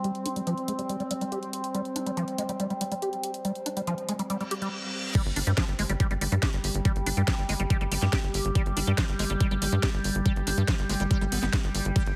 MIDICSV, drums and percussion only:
0, 0, Header, 1, 2, 480
1, 0, Start_track
1, 0, Tempo, 425532
1, 49, Time_signature, 4, 2, 24, 8
1, 13714, End_track
2, 0, Start_track
2, 0, Title_t, "Drums"
2, 49, Note_on_c, 9, 42, 50
2, 162, Note_off_c, 9, 42, 0
2, 169, Note_on_c, 9, 42, 25
2, 281, Note_off_c, 9, 42, 0
2, 289, Note_on_c, 9, 42, 90
2, 401, Note_off_c, 9, 42, 0
2, 409, Note_on_c, 9, 42, 52
2, 521, Note_off_c, 9, 42, 0
2, 529, Note_on_c, 9, 42, 53
2, 642, Note_off_c, 9, 42, 0
2, 649, Note_on_c, 9, 42, 26
2, 762, Note_off_c, 9, 42, 0
2, 769, Note_on_c, 9, 42, 81
2, 881, Note_off_c, 9, 42, 0
2, 889, Note_on_c, 9, 42, 53
2, 1001, Note_off_c, 9, 42, 0
2, 1009, Note_on_c, 9, 42, 52
2, 1122, Note_off_c, 9, 42, 0
2, 1129, Note_on_c, 9, 42, 25
2, 1242, Note_off_c, 9, 42, 0
2, 1249, Note_on_c, 9, 42, 92
2, 1362, Note_off_c, 9, 42, 0
2, 1369, Note_on_c, 9, 42, 50
2, 1482, Note_off_c, 9, 42, 0
2, 1489, Note_on_c, 9, 42, 52
2, 1602, Note_off_c, 9, 42, 0
2, 1609, Note_on_c, 9, 42, 27
2, 1722, Note_off_c, 9, 42, 0
2, 1729, Note_on_c, 9, 42, 91
2, 1842, Note_off_c, 9, 42, 0
2, 1849, Note_on_c, 9, 42, 52
2, 1962, Note_off_c, 9, 42, 0
2, 1969, Note_on_c, 9, 42, 52
2, 2082, Note_off_c, 9, 42, 0
2, 2089, Note_on_c, 9, 42, 26
2, 2202, Note_off_c, 9, 42, 0
2, 2209, Note_on_c, 9, 42, 94
2, 2322, Note_off_c, 9, 42, 0
2, 2329, Note_on_c, 9, 42, 55
2, 2442, Note_off_c, 9, 42, 0
2, 2449, Note_on_c, 9, 42, 53
2, 2562, Note_off_c, 9, 42, 0
2, 2569, Note_on_c, 9, 42, 26
2, 2682, Note_off_c, 9, 42, 0
2, 2689, Note_on_c, 9, 42, 88
2, 2802, Note_off_c, 9, 42, 0
2, 2809, Note_on_c, 9, 42, 53
2, 2922, Note_off_c, 9, 42, 0
2, 2929, Note_on_c, 9, 42, 56
2, 3042, Note_off_c, 9, 42, 0
2, 3049, Note_on_c, 9, 42, 27
2, 3162, Note_off_c, 9, 42, 0
2, 3169, Note_on_c, 9, 42, 94
2, 3282, Note_off_c, 9, 42, 0
2, 3289, Note_on_c, 9, 42, 53
2, 3402, Note_off_c, 9, 42, 0
2, 3409, Note_on_c, 9, 42, 54
2, 3522, Note_off_c, 9, 42, 0
2, 3529, Note_on_c, 9, 42, 27
2, 3642, Note_off_c, 9, 42, 0
2, 3649, Note_on_c, 9, 42, 92
2, 3762, Note_off_c, 9, 42, 0
2, 3769, Note_on_c, 9, 42, 52
2, 3882, Note_off_c, 9, 42, 0
2, 3889, Note_on_c, 9, 42, 54
2, 4002, Note_off_c, 9, 42, 0
2, 4009, Note_on_c, 9, 42, 28
2, 4122, Note_off_c, 9, 42, 0
2, 4129, Note_on_c, 9, 42, 94
2, 4242, Note_off_c, 9, 42, 0
2, 4249, Note_on_c, 9, 42, 57
2, 4362, Note_off_c, 9, 42, 0
2, 4369, Note_on_c, 9, 42, 57
2, 4482, Note_off_c, 9, 42, 0
2, 4489, Note_on_c, 9, 42, 27
2, 4602, Note_off_c, 9, 42, 0
2, 4609, Note_on_c, 9, 42, 92
2, 4721, Note_off_c, 9, 42, 0
2, 4729, Note_on_c, 9, 42, 56
2, 4842, Note_off_c, 9, 42, 0
2, 4849, Note_on_c, 9, 42, 58
2, 4962, Note_off_c, 9, 42, 0
2, 4969, Note_on_c, 9, 42, 28
2, 5082, Note_off_c, 9, 42, 0
2, 5089, Note_on_c, 9, 42, 95
2, 5202, Note_off_c, 9, 42, 0
2, 5209, Note_on_c, 9, 42, 52
2, 5322, Note_off_c, 9, 42, 0
2, 5809, Note_on_c, 9, 36, 120
2, 5809, Note_on_c, 9, 42, 56
2, 5809, Note_on_c, 9, 49, 104
2, 5922, Note_off_c, 9, 36, 0
2, 5922, Note_off_c, 9, 42, 0
2, 5922, Note_off_c, 9, 49, 0
2, 5929, Note_on_c, 9, 42, 27
2, 6042, Note_off_c, 9, 42, 0
2, 6049, Note_on_c, 9, 46, 105
2, 6162, Note_off_c, 9, 46, 0
2, 6169, Note_on_c, 9, 42, 59
2, 6282, Note_off_c, 9, 42, 0
2, 6289, Note_on_c, 9, 36, 125
2, 6289, Note_on_c, 9, 38, 127
2, 6289, Note_on_c, 9, 42, 58
2, 6402, Note_off_c, 9, 36, 0
2, 6402, Note_off_c, 9, 38, 0
2, 6402, Note_off_c, 9, 42, 0
2, 6409, Note_on_c, 9, 42, 28
2, 6522, Note_off_c, 9, 42, 0
2, 6529, Note_on_c, 9, 46, 88
2, 6642, Note_off_c, 9, 46, 0
2, 6649, Note_on_c, 9, 42, 59
2, 6762, Note_off_c, 9, 42, 0
2, 6769, Note_on_c, 9, 36, 124
2, 6769, Note_on_c, 9, 42, 59
2, 6882, Note_off_c, 9, 36, 0
2, 6882, Note_off_c, 9, 42, 0
2, 6889, Note_on_c, 9, 42, 28
2, 7002, Note_off_c, 9, 42, 0
2, 7009, Note_on_c, 9, 46, 105
2, 7122, Note_off_c, 9, 46, 0
2, 7129, Note_on_c, 9, 42, 55
2, 7242, Note_off_c, 9, 42, 0
2, 7249, Note_on_c, 9, 36, 122
2, 7249, Note_on_c, 9, 38, 127
2, 7249, Note_on_c, 9, 42, 57
2, 7362, Note_off_c, 9, 36, 0
2, 7362, Note_off_c, 9, 38, 0
2, 7362, Note_off_c, 9, 42, 0
2, 7369, Note_on_c, 9, 42, 29
2, 7482, Note_off_c, 9, 42, 0
2, 7489, Note_on_c, 9, 46, 95
2, 7602, Note_off_c, 9, 46, 0
2, 7609, Note_on_c, 9, 42, 58
2, 7722, Note_off_c, 9, 42, 0
2, 7729, Note_on_c, 9, 36, 121
2, 7729, Note_on_c, 9, 42, 53
2, 7842, Note_off_c, 9, 36, 0
2, 7842, Note_off_c, 9, 42, 0
2, 7849, Note_on_c, 9, 42, 28
2, 7962, Note_off_c, 9, 42, 0
2, 7969, Note_on_c, 9, 46, 111
2, 8081, Note_off_c, 9, 46, 0
2, 8089, Note_on_c, 9, 42, 58
2, 8202, Note_off_c, 9, 42, 0
2, 8209, Note_on_c, 9, 36, 126
2, 8209, Note_on_c, 9, 38, 127
2, 8209, Note_on_c, 9, 42, 57
2, 8321, Note_off_c, 9, 36, 0
2, 8322, Note_off_c, 9, 38, 0
2, 8322, Note_off_c, 9, 42, 0
2, 8329, Note_on_c, 9, 42, 28
2, 8442, Note_off_c, 9, 42, 0
2, 8449, Note_on_c, 9, 46, 92
2, 8562, Note_off_c, 9, 46, 0
2, 8569, Note_on_c, 9, 42, 57
2, 8682, Note_off_c, 9, 42, 0
2, 8689, Note_on_c, 9, 36, 125
2, 8689, Note_on_c, 9, 42, 56
2, 8802, Note_off_c, 9, 36, 0
2, 8802, Note_off_c, 9, 42, 0
2, 8809, Note_on_c, 9, 42, 28
2, 8922, Note_off_c, 9, 42, 0
2, 8929, Note_on_c, 9, 46, 111
2, 9042, Note_off_c, 9, 46, 0
2, 9049, Note_on_c, 9, 38, 39
2, 9049, Note_on_c, 9, 42, 54
2, 9162, Note_off_c, 9, 38, 0
2, 9162, Note_off_c, 9, 42, 0
2, 9169, Note_on_c, 9, 36, 126
2, 9169, Note_on_c, 9, 38, 127
2, 9169, Note_on_c, 9, 42, 54
2, 9282, Note_off_c, 9, 36, 0
2, 9282, Note_off_c, 9, 38, 0
2, 9282, Note_off_c, 9, 42, 0
2, 9289, Note_on_c, 9, 42, 28
2, 9402, Note_off_c, 9, 42, 0
2, 9409, Note_on_c, 9, 46, 97
2, 9522, Note_off_c, 9, 46, 0
2, 9529, Note_on_c, 9, 42, 55
2, 9642, Note_off_c, 9, 42, 0
2, 9649, Note_on_c, 9, 36, 124
2, 9649, Note_on_c, 9, 42, 52
2, 9762, Note_off_c, 9, 36, 0
2, 9762, Note_off_c, 9, 42, 0
2, 9769, Note_on_c, 9, 42, 27
2, 9882, Note_off_c, 9, 42, 0
2, 9889, Note_on_c, 9, 46, 112
2, 10002, Note_off_c, 9, 46, 0
2, 10009, Note_on_c, 9, 42, 55
2, 10122, Note_off_c, 9, 42, 0
2, 10129, Note_on_c, 9, 36, 124
2, 10129, Note_on_c, 9, 38, 126
2, 10129, Note_on_c, 9, 42, 55
2, 10242, Note_off_c, 9, 36, 0
2, 10242, Note_off_c, 9, 38, 0
2, 10242, Note_off_c, 9, 42, 0
2, 10249, Note_on_c, 9, 42, 26
2, 10362, Note_off_c, 9, 42, 0
2, 10369, Note_on_c, 9, 46, 96
2, 10482, Note_off_c, 9, 46, 0
2, 10489, Note_on_c, 9, 42, 54
2, 10602, Note_off_c, 9, 42, 0
2, 10609, Note_on_c, 9, 36, 127
2, 10609, Note_on_c, 9, 42, 53
2, 10722, Note_off_c, 9, 36, 0
2, 10722, Note_off_c, 9, 42, 0
2, 10729, Note_on_c, 9, 42, 27
2, 10842, Note_off_c, 9, 42, 0
2, 10849, Note_on_c, 9, 46, 118
2, 10962, Note_off_c, 9, 46, 0
2, 10969, Note_on_c, 9, 42, 50
2, 11082, Note_off_c, 9, 42, 0
2, 11089, Note_on_c, 9, 36, 127
2, 11089, Note_on_c, 9, 38, 123
2, 11089, Note_on_c, 9, 42, 53
2, 11202, Note_off_c, 9, 36, 0
2, 11202, Note_off_c, 9, 38, 0
2, 11202, Note_off_c, 9, 42, 0
2, 11209, Note_on_c, 9, 42, 27
2, 11322, Note_off_c, 9, 42, 0
2, 11329, Note_on_c, 9, 46, 95
2, 11442, Note_off_c, 9, 46, 0
2, 11449, Note_on_c, 9, 42, 53
2, 11562, Note_off_c, 9, 42, 0
2, 11569, Note_on_c, 9, 36, 120
2, 11569, Note_on_c, 9, 42, 52
2, 11682, Note_off_c, 9, 36, 0
2, 11682, Note_off_c, 9, 42, 0
2, 11689, Note_on_c, 9, 42, 26
2, 11802, Note_off_c, 9, 42, 0
2, 11809, Note_on_c, 9, 46, 112
2, 11922, Note_off_c, 9, 46, 0
2, 11929, Note_on_c, 9, 42, 53
2, 12042, Note_off_c, 9, 42, 0
2, 12049, Note_on_c, 9, 36, 123
2, 12049, Note_on_c, 9, 38, 119
2, 12049, Note_on_c, 9, 42, 53
2, 12162, Note_off_c, 9, 36, 0
2, 12162, Note_off_c, 9, 38, 0
2, 12162, Note_off_c, 9, 42, 0
2, 12169, Note_on_c, 9, 42, 26
2, 12282, Note_off_c, 9, 42, 0
2, 12289, Note_on_c, 9, 46, 94
2, 12402, Note_off_c, 9, 46, 0
2, 12409, Note_on_c, 9, 42, 53
2, 12522, Note_off_c, 9, 42, 0
2, 12529, Note_on_c, 9, 36, 127
2, 12529, Note_on_c, 9, 42, 53
2, 12642, Note_off_c, 9, 36, 0
2, 12642, Note_off_c, 9, 42, 0
2, 12649, Note_on_c, 9, 42, 26
2, 12762, Note_off_c, 9, 42, 0
2, 12769, Note_on_c, 9, 46, 114
2, 12882, Note_off_c, 9, 46, 0
2, 12889, Note_on_c, 9, 38, 38
2, 12889, Note_on_c, 9, 42, 50
2, 13002, Note_off_c, 9, 38, 0
2, 13002, Note_off_c, 9, 42, 0
2, 13009, Note_on_c, 9, 36, 127
2, 13009, Note_on_c, 9, 38, 123
2, 13009, Note_on_c, 9, 42, 52
2, 13121, Note_off_c, 9, 38, 0
2, 13121, Note_off_c, 9, 42, 0
2, 13122, Note_off_c, 9, 36, 0
2, 13129, Note_on_c, 9, 42, 26
2, 13242, Note_off_c, 9, 42, 0
2, 13249, Note_on_c, 9, 46, 101
2, 13362, Note_off_c, 9, 46, 0
2, 13369, Note_on_c, 9, 42, 52
2, 13482, Note_off_c, 9, 42, 0
2, 13489, Note_on_c, 9, 36, 117
2, 13489, Note_on_c, 9, 42, 50
2, 13489, Note_on_c, 9, 51, 54
2, 13602, Note_off_c, 9, 36, 0
2, 13602, Note_off_c, 9, 42, 0
2, 13602, Note_off_c, 9, 51, 0
2, 13609, Note_on_c, 9, 42, 26
2, 13714, Note_off_c, 9, 42, 0
2, 13714, End_track
0, 0, End_of_file